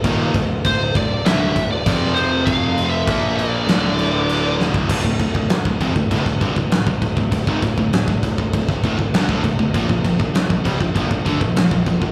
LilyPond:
<<
  \new Staff \with { instrumentName = "Lead electric guitar" } { \time 4/4 \key d \minor \tempo 4 = 99 r4 c''8 d''8 e''8. d''8. c''8 | f''8. e''8. d''2 r8 | r1 | r1 |
r1 | }
  \new Staff \with { instrumentName = "Pipe organ" } { \time 4/4 \key d \minor f'2. f'4~ | f'1 | r1 | r1 |
r1 | }
  \new Staff \with { instrumentName = "Pipe organ" } { \time 4/4 \key d \minor << { <d a'>2. <c c''>4~ | <c c''>4 <bes, bes'>4 <d a'>2 | r1 | r1 |
r1 | } \\ { a2. f4~ | f2 a2 | r1 | r1 |
r1 | } >> }
  \new Staff \with { instrumentName = "Distorted electric guitar" } { \clef bass \time 4/4 \key d \minor <ees, bes, ees>8 <d, a,>8 <d, a,>8 <d, a,>8 <d, a, d>8 <d, a,>8 <f, c f>4~ | <f, c f>4 <bes, f bes>4 <d, a, d>2 | <d, a,>16 <d, a,>16 <d, a,>16 <d, a,>16 <d, a,>16 <d, a,>16 <f, c>16 <d, a,>16 <d, a,>16 <d, a,>16 <g, d>16 <d, a,>16 <d, a,>16 <d, a,>16 <d, a,>16 <d, a,>16 | <d, a,>16 <gis, ees>16 <d, a,>16 <d, a,>8 <d, a,>16 <d, a,>16 <d, a,>16 <d, a,>16 <d, a,>16 <d, a,>16 <d, a,>16 <g, d>16 <d, a,>16 <d, a,>16 <d, a,>16 |
<bes, f>16 <bes, f>16 <bes, f>16 <bes, f>16 <bes, f>16 <bes, f>16 <c g>16 <bes, f>16 <bes, f>16 <bes, f>16 <d a>16 <bes, f>16 <bes, f>16 <bes, f>16 <bes, f>16 <bes, f>16 | }
  \new Staff \with { instrumentName = "Overdriven electric guitar" } { \clef bass \time 4/4 \key d \minor <ees, bes, ees>8 <d, a,>8 <d, a,>8 <d, a,>8 <d, a, d>8 <d, a,>8 <f, c f>4~ | <f, c f>4 <bes, f bes>4 <d, a, d>2 | <d, a,>16 <d, a,>16 <d, a,>16 <d, a,>16 <d, a,>16 <d, a,>16 <f, c>16 <d, a,>16 <d, a,>16 <d, a,>16 <g, d>16 <d, a,>16 <d, a,>16 <d, a,>16 <d, a,>16 <d, a,>16 | <d, a,>16 <gis, ees>16 <d, a,>16 <d, a,>8 <d, a,>16 <d, a,>16 <d, a,>16 <d, a,>16 <d, a,>16 <d, a,>16 <d, a,>16 <g, d>16 <d, a,>16 <d, a,>16 <d, a,>16 |
<bes, f>16 <bes, f>16 <bes, f>16 <bes, f>16 <bes, f>16 <bes, f>16 <c g>16 <bes, f>16 <bes, f>16 <bes, f>16 <d a>16 <bes, f>16 <bes, f>16 <bes, f>16 <bes, f>16 <bes, f>16 | }
  \new Staff \with { instrumentName = "Fingered electric bass" } { \clef bass \time 4/4 \key d \minor ees,,8 d,,8 d,,8 d,,8 d,,8 d,,8 f,,4~ | f,,4 bes,,4 d,,2 | d,,16 d,,16 d,,16 d,,16 d,,16 d,,16 f,,16 d,,16 d,,16 d,,16 g,,16 d,,16 d,,16 d,,16 d,,16 d,,16 | d,,16 gis,,16 d,,16 d,,8 d,,16 d,,16 d,,16 d,,16 d,,16 d,,16 d,,16 g,,16 d,,16 d,,16 d,,16 |
bes,,16 bes,,16 bes,,16 bes,,16 bes,,16 bes,,16 c,16 bes,,16 bes,,16 bes,,16 d,16 bes,,16 bes,,16 bes,,16 bes,,16 bes,,16 | }
  \new DrumStaff \with { instrumentName = "Drums" } \drummode { \time 4/4 <cymc bd>8 <cymc bd>8 <cymc bd>8 <cymc bd>8 <cymc sn>8 <cymc bd>8 <cymc bd>8 cymc8 | <cymc bd>8 cymc8 <cymc bd>8 cymc8 <cymc sn>8 cymc8 cymc8 sn16 bd16 | <cymc bd>16 bd16 <cymc bd>16 bd16 <cymc sn>16 bd16 <cymc bd>16 bd16 <cymc bd>16 <bd sn>16 <cymc bd>16 bd16 <cymc sn>16 bd16 <cymc bd>16 bd16 | <cymc bd>16 bd16 <cymc bd sn>16 bd16 <cymc sn>16 bd16 <cymc bd>16 bd16 <cymc bd>16 <bd sn>16 <cymc bd>16 bd16 <cymc sn>16 bd16 <cymc bd>16 bd16 |
<cymc bd>16 bd16 <cymc bd>16 bd16 <cymc sn>16 bd16 <cymc bd>16 bd16 <cymc bd>16 bd16 <cymc bd>16 bd16 <cymc sn>16 bd16 <cymc bd>16 bd16 | }
>>